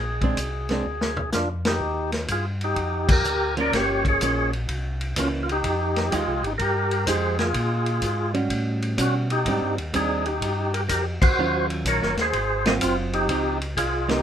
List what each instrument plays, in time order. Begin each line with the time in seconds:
Already playing: tonewheel organ A#1 G#4
0.21 hollow-body jazz guitar G#3 C4 D4, kick, ride
0.37 tonewheel organ C2, kick, hi-hat pedal, ride
0.69 hollow-body jazz guitar G#3 C4 D4, snare, ride
0.86 tonewheel organ D2
1.01 snare
1.17 floor tom
1.32 tonewheel organ F2 D4 F4, snare, hi-hat pedal
1.65 tonewheel organ D#4 G4, snare, ride
1.80 tonewheel organ D#2
2.12 snare, ride
2.28 tonewheel organ G2 F4 G#4, kick, hi-hat pedal, ride
2.61 tonewheel organ D#4 G4, ride
2.76 tonewheel organ F2, kick, ride
3.09 tonewheel organ G4 A#4, kick, crash
3.24 tonewheel organ D2, hi-hat pedal
3.57 hollow-body jazz guitar F3 A#3 C#4, tonewheel organ D5, ride
3.61 tonewheel organ A#4
3.73 tonewheel organ G1 G4 C#5, kick, snare, ride
4.05 tonewheel organ G#4 C#5, kick, ride
4.21 tonewheel organ A#1, hollow-body jazz guitar F3 A#3 C#4, kick, hi-hat pedal, ride
4.53 ride
4.68 tonewheel organ C2, kick, ride
5.01 ride
5.16 tonewheel organ C#2 C#4 F4, hollow-body jazz guitar E3 A#3 C#4, kick, hi-hat pedal, ride
5.43 tonewheel organ F4
5.49 tonewheel organ D#4 G4, ride
5.64 tonewheel organ F2, kick, ride
5.96 snare, ride
6.11 tonewheel organ D#2 F4 G#4, hollow-body jazz guitar F3 G#3 D#4 G4, kick, hi-hat pedal, ride
6.27 tonewheel organ C2
6.42 tonewheel organ G#1 G4, ride
6.47 tonewheel organ D#4
6.58 tonewheel organ G2 G4 A#4, kick, ride
6.91 ride
7.06 tonewheel organ F2 G#4 C5, hollow-body jazz guitar F3 G#3 D#4 G4, kick, hi-hat pedal, ride
7.39 tonewheel organ F4 G#4, snare, ride
7.54 tonewheel organ A#2, kick, ride
7.86 ride
8.02 tonewheel organ G#2, kick, hi-hat pedal, ride
8.34 hollow-body jazz guitar G3 C#4 F#4, ride
8.50 tonewheel organ A2, kick, ride
8.82 ride
8.97 tonewheel organ B2 F#4, hollow-body jazz guitar G3 C#4 F#4, kick, hi-hat pedal, ride
9.02 tonewheel organ C#4
9.30 tonewheel organ D#4 G4, ride
9.45 tonewheel organ G#2, hollow-body jazz guitar G3 C4 D4, kick, ride
9.62 tonewheel organ G2
9.78 tonewheel organ D#2, ride
9.94 tonewheel organ D#2 D#4 G#4, hollow-body jazz guitar G3 C4 D4, kick, hi-hat pedal, ride
10.26 tonewheel organ D#4 G4, ride
10.41 tonewheel organ G2, kick, ride
10.74 tonewheel organ G4 A#4, ride
10.89 tonewheel organ F2 G4 A#4, kick, hi-hat pedal, ride
11.22 tonewheel organ F2 F#4 C5, kick, crash
11.38 tonewheel organ D#2, hollow-body jazz guitar D#3 F#3 C#4 F4
11.70 ride
11.85 tonewheel organ A#1 A#4 C#5, kick, hi-hat pedal, ride
12.02 tonewheel organ F#1, snare
12.17 tonewheel organ D#2, snare, ride
12.21 tonewheel organ G#4 C5
12.33 tonewheel organ G#1, kick, ride
12.65 hollow-body jazz guitar F#3 C4 F4, tonewheel organ C5 D#5, snare, ride
12.81 tonewheel organ F#1 C4 F4, kick, hi-hat pedal, ride
13.13 tonewheel organ D#4 G4, ride
13.29 tonewheel organ C#2, hollow-body jazz guitar F3 C4 D#4, kick, ride
13.61 ride
13.77 tonewheel organ C2 F4 G#4, kick, hi-hat pedal, ride
14.08 hollow-body jazz guitar F3 C4 D#4, tonewheel organ D#4 G4, snare, ride